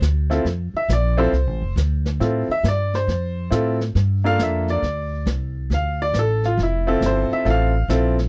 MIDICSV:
0, 0, Header, 1, 5, 480
1, 0, Start_track
1, 0, Key_signature, -1, "minor"
1, 0, Tempo, 437637
1, 494, Time_signature, 4, 2, 24, 8
1, 9090, End_track
2, 0, Start_track
2, 0, Title_t, "Upright piano"
2, 0, Program_c, 0, 0
2, 328, Note_on_c, 0, 60, 59
2, 333, Note_on_c, 0, 64, 55
2, 337, Note_on_c, 0, 65, 55
2, 339, Note_on_c, 0, 69, 65
2, 476, Note_off_c, 0, 60, 0
2, 479, Note_off_c, 0, 64, 0
2, 481, Note_off_c, 0, 65, 0
2, 482, Note_off_c, 0, 69, 0
2, 839, Note_on_c, 0, 76, 91
2, 984, Note_off_c, 0, 76, 0
2, 1016, Note_on_c, 0, 74, 78
2, 1288, Note_on_c, 0, 60, 79
2, 1290, Note_on_c, 0, 65, 67
2, 1292, Note_on_c, 0, 64, 66
2, 1298, Note_on_c, 0, 69, 82
2, 1304, Note_off_c, 0, 74, 0
2, 1312, Note_on_c, 0, 72, 82
2, 1437, Note_off_c, 0, 60, 0
2, 1438, Note_off_c, 0, 65, 0
2, 1439, Note_off_c, 0, 64, 0
2, 1442, Note_off_c, 0, 69, 0
2, 1901, Note_off_c, 0, 72, 0
2, 2416, Note_on_c, 0, 60, 55
2, 2418, Note_on_c, 0, 64, 45
2, 2425, Note_on_c, 0, 65, 46
2, 2426, Note_on_c, 0, 69, 57
2, 2702, Note_off_c, 0, 60, 0
2, 2702, Note_off_c, 0, 64, 0
2, 2706, Note_off_c, 0, 65, 0
2, 2706, Note_off_c, 0, 69, 0
2, 2758, Note_on_c, 0, 76, 99
2, 2904, Note_off_c, 0, 76, 0
2, 2942, Note_on_c, 0, 74, 84
2, 3228, Note_off_c, 0, 74, 0
2, 3236, Note_on_c, 0, 72, 76
2, 3823, Note_off_c, 0, 72, 0
2, 3845, Note_on_c, 0, 60, 56
2, 3850, Note_on_c, 0, 64, 54
2, 3854, Note_on_c, 0, 65, 52
2, 3862, Note_on_c, 0, 69, 69
2, 4136, Note_off_c, 0, 60, 0
2, 4139, Note_off_c, 0, 64, 0
2, 4141, Note_off_c, 0, 65, 0
2, 4145, Note_off_c, 0, 69, 0
2, 4653, Note_on_c, 0, 58, 61
2, 4655, Note_on_c, 0, 62, 52
2, 4657, Note_on_c, 0, 65, 55
2, 4665, Note_on_c, 0, 69, 67
2, 4676, Note_on_c, 0, 77, 101
2, 4823, Note_off_c, 0, 77, 0
2, 4857, Note_on_c, 0, 76, 78
2, 5145, Note_off_c, 0, 76, 0
2, 5159, Note_on_c, 0, 74, 78
2, 5263, Note_off_c, 0, 58, 0
2, 5264, Note_off_c, 0, 62, 0
2, 5265, Note_off_c, 0, 65, 0
2, 5269, Note_off_c, 0, 69, 0
2, 5745, Note_off_c, 0, 74, 0
2, 6297, Note_on_c, 0, 77, 72
2, 6585, Note_off_c, 0, 77, 0
2, 6602, Note_on_c, 0, 74, 88
2, 6745, Note_off_c, 0, 74, 0
2, 6789, Note_on_c, 0, 69, 82
2, 7071, Note_off_c, 0, 69, 0
2, 7080, Note_on_c, 0, 65, 80
2, 7224, Note_off_c, 0, 65, 0
2, 7271, Note_on_c, 0, 64, 67
2, 7522, Note_off_c, 0, 64, 0
2, 7537, Note_on_c, 0, 60, 72
2, 7539, Note_on_c, 0, 64, 69
2, 7544, Note_on_c, 0, 65, 59
2, 7549, Note_on_c, 0, 69, 83
2, 7745, Note_on_c, 0, 72, 88
2, 8028, Note_off_c, 0, 72, 0
2, 8039, Note_on_c, 0, 76, 98
2, 8144, Note_off_c, 0, 60, 0
2, 8145, Note_off_c, 0, 64, 0
2, 8148, Note_off_c, 0, 65, 0
2, 8150, Note_off_c, 0, 69, 0
2, 8170, Note_on_c, 0, 60, 54
2, 8175, Note_on_c, 0, 64, 53
2, 8178, Note_on_c, 0, 65, 52
2, 8181, Note_on_c, 0, 69, 65
2, 8183, Note_off_c, 0, 76, 0
2, 8229, Note_on_c, 0, 77, 88
2, 8457, Note_off_c, 0, 60, 0
2, 8460, Note_off_c, 0, 64, 0
2, 8461, Note_off_c, 0, 65, 0
2, 8463, Note_off_c, 0, 69, 0
2, 8650, Note_off_c, 0, 77, 0
2, 8659, Note_on_c, 0, 60, 64
2, 8661, Note_on_c, 0, 64, 56
2, 8664, Note_on_c, 0, 65, 57
2, 8666, Note_on_c, 0, 69, 72
2, 8942, Note_off_c, 0, 60, 0
2, 8943, Note_off_c, 0, 64, 0
2, 8944, Note_off_c, 0, 65, 0
2, 8945, Note_off_c, 0, 69, 0
2, 9090, End_track
3, 0, Start_track
3, 0, Title_t, "Upright bass"
3, 0, Program_c, 1, 32
3, 8, Note_on_c, 1, 38, 82
3, 477, Note_off_c, 1, 38, 0
3, 491, Note_on_c, 1, 41, 81
3, 788, Note_off_c, 1, 41, 0
3, 972, Note_on_c, 1, 34, 86
3, 1439, Note_off_c, 1, 34, 0
3, 1453, Note_on_c, 1, 36, 80
3, 1611, Note_off_c, 1, 36, 0
3, 1611, Note_on_c, 1, 33, 54
3, 1767, Note_off_c, 1, 33, 0
3, 1773, Note_on_c, 1, 29, 64
3, 1923, Note_off_c, 1, 29, 0
3, 1930, Note_on_c, 1, 38, 84
3, 2399, Note_off_c, 1, 38, 0
3, 2419, Note_on_c, 1, 45, 84
3, 2713, Note_off_c, 1, 45, 0
3, 2890, Note_on_c, 1, 43, 85
3, 3359, Note_off_c, 1, 43, 0
3, 3372, Note_on_c, 1, 41, 78
3, 3840, Note_off_c, 1, 41, 0
3, 3854, Note_on_c, 1, 45, 79
3, 4321, Note_off_c, 1, 45, 0
3, 4333, Note_on_c, 1, 43, 82
3, 4800, Note_off_c, 1, 43, 0
3, 4815, Note_on_c, 1, 41, 85
3, 5281, Note_off_c, 1, 41, 0
3, 5292, Note_on_c, 1, 38, 84
3, 5760, Note_off_c, 1, 38, 0
3, 5767, Note_on_c, 1, 36, 83
3, 6237, Note_off_c, 1, 36, 0
3, 6252, Note_on_c, 1, 38, 84
3, 6719, Note_off_c, 1, 38, 0
3, 6730, Note_on_c, 1, 33, 89
3, 7198, Note_off_c, 1, 33, 0
3, 7211, Note_on_c, 1, 29, 89
3, 7678, Note_off_c, 1, 29, 0
3, 7687, Note_on_c, 1, 31, 81
3, 7986, Note_off_c, 1, 31, 0
3, 8175, Note_on_c, 1, 33, 88
3, 8640, Note_off_c, 1, 33, 0
3, 8647, Note_on_c, 1, 34, 87
3, 9090, Note_off_c, 1, 34, 0
3, 9090, End_track
4, 0, Start_track
4, 0, Title_t, "Muted upright bass strokes"
4, 809, Note_on_c, 9, 29, 40
4, 919, Note_off_c, 9, 29, 0
4, 2730, Note_on_c, 9, 29, 39
4, 2840, Note_off_c, 9, 29, 0
4, 8014, Note_on_c, 9, 29, 42
4, 8123, Note_off_c, 9, 29, 0
4, 9090, End_track
5, 0, Start_track
5, 0, Title_t, "Drums"
5, 21, Note_on_c, 9, 44, 50
5, 22, Note_on_c, 9, 38, 63
5, 131, Note_off_c, 9, 44, 0
5, 132, Note_off_c, 9, 38, 0
5, 336, Note_on_c, 9, 38, 40
5, 446, Note_off_c, 9, 38, 0
5, 499, Note_on_c, 9, 25, 49
5, 499, Note_on_c, 9, 38, 41
5, 608, Note_off_c, 9, 38, 0
5, 981, Note_on_c, 9, 44, 53
5, 982, Note_on_c, 9, 38, 67
5, 1090, Note_off_c, 9, 44, 0
5, 1091, Note_off_c, 9, 38, 0
5, 1460, Note_off_c, 9, 25, 0
5, 1460, Note_on_c, 9, 25, 40
5, 1460, Note_on_c, 9, 38, 37
5, 1570, Note_off_c, 9, 38, 0
5, 1940, Note_on_c, 9, 44, 59
5, 1942, Note_on_c, 9, 38, 59
5, 2050, Note_off_c, 9, 44, 0
5, 2051, Note_off_c, 9, 38, 0
5, 2253, Note_on_c, 9, 38, 40
5, 2363, Note_off_c, 9, 38, 0
5, 2419, Note_off_c, 9, 25, 0
5, 2419, Note_on_c, 9, 25, 46
5, 2419, Note_on_c, 9, 38, 41
5, 2528, Note_off_c, 9, 38, 0
5, 2898, Note_on_c, 9, 44, 58
5, 2899, Note_on_c, 9, 38, 66
5, 3007, Note_off_c, 9, 44, 0
5, 3008, Note_off_c, 9, 38, 0
5, 3220, Note_on_c, 9, 38, 38
5, 3330, Note_off_c, 9, 38, 0
5, 3382, Note_off_c, 9, 25, 0
5, 3382, Note_on_c, 9, 25, 45
5, 3382, Note_on_c, 9, 38, 42
5, 3491, Note_off_c, 9, 38, 0
5, 3856, Note_on_c, 9, 44, 52
5, 3857, Note_on_c, 9, 38, 65
5, 3965, Note_off_c, 9, 44, 0
5, 3966, Note_off_c, 9, 38, 0
5, 4175, Note_on_c, 9, 38, 36
5, 4284, Note_off_c, 9, 38, 0
5, 4335, Note_off_c, 9, 25, 0
5, 4335, Note_on_c, 9, 25, 42
5, 4335, Note_on_c, 9, 38, 44
5, 4445, Note_off_c, 9, 38, 0
5, 4816, Note_on_c, 9, 44, 62
5, 4817, Note_on_c, 9, 38, 62
5, 4926, Note_off_c, 9, 44, 0
5, 4927, Note_off_c, 9, 38, 0
5, 5133, Note_on_c, 9, 38, 41
5, 5242, Note_off_c, 9, 38, 0
5, 5297, Note_off_c, 9, 25, 0
5, 5297, Note_on_c, 9, 25, 43
5, 5297, Note_on_c, 9, 38, 41
5, 5407, Note_off_c, 9, 38, 0
5, 5774, Note_on_c, 9, 44, 62
5, 5775, Note_on_c, 9, 38, 64
5, 5884, Note_off_c, 9, 44, 0
5, 5885, Note_off_c, 9, 38, 0
5, 6259, Note_off_c, 9, 25, 0
5, 6259, Note_on_c, 9, 25, 45
5, 6259, Note_on_c, 9, 38, 42
5, 6369, Note_off_c, 9, 38, 0
5, 6733, Note_on_c, 9, 44, 58
5, 6734, Note_on_c, 9, 38, 65
5, 6843, Note_off_c, 9, 44, 0
5, 6844, Note_off_c, 9, 38, 0
5, 7057, Note_on_c, 9, 38, 38
5, 7166, Note_off_c, 9, 38, 0
5, 7221, Note_off_c, 9, 25, 0
5, 7221, Note_on_c, 9, 25, 45
5, 7221, Note_on_c, 9, 38, 37
5, 7331, Note_off_c, 9, 38, 0
5, 7698, Note_on_c, 9, 44, 58
5, 7699, Note_on_c, 9, 38, 68
5, 7807, Note_off_c, 9, 44, 0
5, 7808, Note_off_c, 9, 38, 0
5, 8181, Note_off_c, 9, 25, 0
5, 8181, Note_on_c, 9, 25, 44
5, 8181, Note_on_c, 9, 38, 45
5, 8291, Note_off_c, 9, 38, 0
5, 8659, Note_on_c, 9, 44, 57
5, 8660, Note_on_c, 9, 38, 70
5, 8769, Note_off_c, 9, 44, 0
5, 8770, Note_off_c, 9, 38, 0
5, 8976, Note_on_c, 9, 38, 41
5, 9086, Note_off_c, 9, 38, 0
5, 9090, Note_off_c, 9, 25, 0
5, 9090, End_track
0, 0, End_of_file